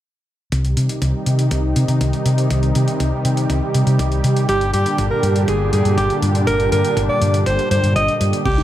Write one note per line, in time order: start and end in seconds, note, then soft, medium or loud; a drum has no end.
0.52 0.73 C2 medium
0.52 4.45 C3 medium
0.52 4.45 D#3 medium
0.52 8.42 G3 medium
0.52 4.45 D#4 medium
0.52 8.42 G4 medium
0.52 kick loud
0.52 closed hi-hat medium
0.65 closed hi-hat soft
0.77 0.87 C3 medium
0.77 closed hi-hat medium
0.89 closed hi-hat soft
1.02 1.12 C2 medium
1.02 kick medium
1.02 closed hi-hat medium
1.26 1.47 C3 medium
1.26 closed hi-hat medium
1.39 closed hi-hat soft
1.51 1.72 C2 medium
1.51 kick loud
1.51 closed hi-hat medium
1.76 1.87 C3 medium
1.76 closed hi-hat medium
1.88 1.99 C3 medium
1.88 closed hi-hat soft
2.01 2.11 C2 medium
2.01 kick medium
2.01 closed hi-hat medium
2.13 closed hi-hat soft
2.26 2.47 C3 medium
2.26 closed hi-hat medium
2.38 closed hi-hat soft
2.50 2.71 C2 medium
2.50 kick loud
2.50 closed hi-hat medium
2.63 closed hi-hat soft
2.75 2.86 C3 medium
2.75 closed hi-hat medium
2.88 closed hi-hat soft
3.00 3.11 C2 medium
3.00 kick loud
3.00 closed hi-hat medium
3.25 3.46 C3 medium
3.25 closed hi-hat medium
3.37 closed hi-hat soft
3.50 3.60 C2 medium
3.50 kick loud
3.50 closed hi-hat medium
3.74 3.85 C3 medium
3.74 closed hi-hat medium
3.87 3.97 C3 medium
3.87 closed hi-hat soft
3.99 4.20 C2 medium
3.99 kick loud
3.99 closed hi-hat medium
4.12 closed hi-hat soft
4.24 4.45 C3 medium
4.24 closed hi-hat medium
4.36 closed hi-hat soft
4.49 4.70 G1 medium
4.49 8.42 A#2 medium
4.49 8.42 D3 medium
4.49 8.42 D4 medium
4.49 4.69 G4 medium
4.49 kick loud
4.49 closed hi-hat medium
4.61 closed hi-hat soft
4.73 4.84 G2 medium
4.73 5.04 G4 medium
4.73 closed hi-hat medium
4.86 closed hi-hat soft
4.98 5.09 G1 medium
4.98 kick loud
4.98 closed hi-hat medium
5.10 5.42 A#4 medium
5.23 5.44 G2 medium
5.23 closed hi-hat medium
5.36 closed hi-hat soft
5.48 5.69 G1 medium
5.48 5.68 G#4 medium
5.48 kick loud
5.48 closed hi-hat medium
5.73 5.83 G2 medium
5.73 5.93 G#4 medium
5.73 closed hi-hat medium
5.85 5.96 G2 medium
5.85 closed hi-hat soft
5.97 6.08 G1 medium
5.97 6.18 G4 medium
5.97 kick loud
5.97 closed hi-hat medium
6.10 closed hi-hat soft
6.22 6.43 G2 medium
6.22 closed hi-hat medium
6.35 closed hi-hat soft
6.47 6.68 G1 medium
6.47 6.68 A#4 loud
6.47 kick loud
6.47 closed hi-hat medium
6.60 closed hi-hat soft
6.72 6.82 G2 medium
6.72 7.03 A#4 medium
6.72 closed hi-hat medium
6.85 closed hi-hat soft
6.97 7.07 G1 medium
6.97 kick loud
6.97 closed hi-hat medium
7.09 7.40 D5 medium
7.22 7.42 G2 medium
7.22 closed hi-hat medium
7.34 closed hi-hat soft
7.46 7.57 G1 medium
7.46 7.67 C5 medium
7.46 kick loud
7.46 closed hi-hat medium
7.59 closed hi-hat soft
7.71 7.82 G2 medium
7.71 7.92 C5 medium
7.71 closed hi-hat medium
7.83 7.94 G2 medium
7.83 closed hi-hat soft
7.96 8.06 G1 medium
7.96 8.16 D#5 medium
7.96 kick loud
7.96 closed hi-hat medium
8.08 closed hi-hat soft
8.21 8.31 G2 medium
8.21 closed hi-hat medium
8.33 closed hi-hat soft
8.45 8.63 C2 medium
8.45 8.63 C3 medium
8.45 8.63 D#3 medium
8.45 8.63 G3 medium
8.45 8.56 C4 medium
8.45 8.63 D#4 medium
8.45 8.63 G4 medium
8.45 kick loud
8.45 closed hi-hat soft
8.45 crash medium
8.58 8.63 D#4 medium
8.58 closed hi-hat soft